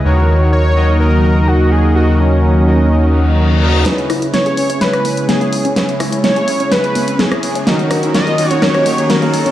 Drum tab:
HH |----------------|----------------|xxoxxxoxxxoxxxox|xxoxxxoxxxoxxxox|
SD |----------------|----------------|o-r-o---or--o---|o-r-o---o---or--|

HH |xxoxxxoxxxoxxxox|
SD |o-r-o---or--o---|